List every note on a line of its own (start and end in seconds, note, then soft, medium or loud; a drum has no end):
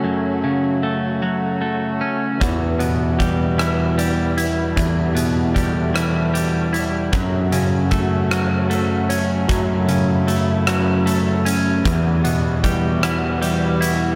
0.00 2.01 F#2 soft
0.00 2.37 C#3 soft
0.00 1.22 F#3 soft
0.00 2.37 F#3 soft
0.00 0.82 A3 soft
0.00 2.36 A3 soft
0.00 1.62 C#4 soft
0.00 7.09 F#4 soft
0.44 2.41 C#3 soft
0.83 1.60 A3 soft
1.22 2.43 F#3 soft
1.61 2.41 A3 soft
2.01 2.41 C#4 soft
2.40 4.38 E2 soft
2.40 4.73 E2 medium
2.40 7.10 E3 soft
2.40 7.10 G3 soft
2.40 4.75 B3 soft
2.40 kick medium
2.40 closed hi-hat soft
2.79 4.77 B2 soft
2.79 closed hi-hat soft
3.19 3.97 G3 soft
3.19 kick soft
3.19 closed hi-hat soft
3.58 5.56 E3 soft
3.58 cross-stick medium
3.58 closed hi-hat soft
3.98 5.53 G3 medium
3.98 closed hi-hat soft
4.37 6.35 E4 soft
4.37 closed hi-hat soft
4.76 6.74 E2 medium
4.76 7.09 E2 soft
4.76 7.11 A3 soft
4.76 kick medium
4.76 closed hi-hat medium
5.15 7.13 B2 soft
5.15 closed hi-hat soft
5.54 6.32 G3 soft
5.54 kick soft
5.54 closed hi-hat soft
5.94 7.13 E3 soft
5.94 cross-stick medium
5.94 closed hi-hat medium
6.34 7.13 G3 soft
6.34 closed hi-hat soft
6.73 7.13 E4 soft
6.73 closed hi-hat soft
7.11 9.10 F#2 soft
7.11 9.45 F#2 medium
7.11 11.80 C#3 medium
7.11 11.81 F#3 medium
7.11 11.81 A3 soft
7.11 9.47 F#4 medium
7.11 kick medium
7.11 closed hi-hat soft
7.52 9.49 C#3 soft
7.52 closed hi-hat soft
7.91 8.69 A3 medium
7.91 kick medium
7.91 closed hi-hat soft
8.31 10.67 F#3 soft
8.31 cross-stick medium
8.31 closed hi-hat soft
8.70 10.26 A3 medium
8.70 closed hi-hat soft
9.09 11.06 C#4 soft
9.09 closed hi-hat soft
9.48 11.45 F#2 medium
9.48 11.81 F#2 medium
9.48 11.83 E4 medium
9.48 kick medium
9.48 closed hi-hat medium
9.88 11.85 C#3 soft
9.88 closed hi-hat soft
10.28 11.05 A3 soft
10.28 closed hi-hat soft
10.67 11.88 F#3 soft
10.67 cross-stick medium
10.67 closed hi-hat soft
11.06 11.85 A3 medium
11.06 closed hi-hat soft
11.45 11.85 C#4 soft
11.45 closed hi-hat soft
11.85 13.82 E2 soft
11.85 14.15 E2 medium
11.85 14.15 E3 medium
11.85 14.15 G3 soft
11.85 14.15 B3 soft
11.85 14.15 F#4 medium
11.85 kick medium
11.85 closed hi-hat medium
12.24 14.15 B2 soft
12.24 closed hi-hat soft
12.64 13.40 G3 soft
12.64 kick soft
12.64 closed hi-hat soft
13.03 14.15 E3 medium
13.03 cross-stick medium
13.03 closed hi-hat medium
13.42 14.15 G3 medium
13.42 closed hi-hat soft
13.81 14.15 E4 soft
13.81 closed hi-hat soft